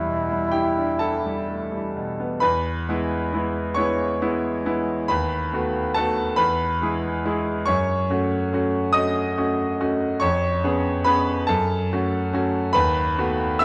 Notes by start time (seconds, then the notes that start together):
Already playing: E2 G3 E4
0.07 B2
0.31 G3
0.52 E4 G4 G5
0.78 D4
0.99 E4 A4 A5
1.26 G3
1.48 A3
1.72 G3
1.96 B2
2.20 B3
2.40 E2 B4 B5
2.89 G#3 B3 E4
3.34 G#3 B3 E4
3.75 G#3 B3 E4 C#5 C#6
4.21 G#3 B3 E4
4.66 G#3 B3 E4
5.08 D#2 B4 B5
5.53 A3 B3 F#4
5.94 A3 B3 F#4 A4 A5
6.36 E2 B4 B5
6.82 G#3 E4 G#4
7.25 G#3 E4 G#4
7.66 F#2 C#5 C#6
8.10 A3 C#4 F#4
8.53 A3 C#4 F#4
8.93 A3 C#4 F#4 D#5 D#6
9.37 A3 C#4 F#4
9.80 A3 C#4 F#4
10.20 F2 C#5 C#6
10.64 B3 C#4 G#4
11.04 B3 C#4 G#4 B4 B5
11.47 F#2 A4 A5
11.92 A3 C#4 F#4
12.33 A3 C#4 F#4
12.73 D#2 B4 B5
13.18 A3 B3 F#4
13.59 A3 B3 F#4 E5 E6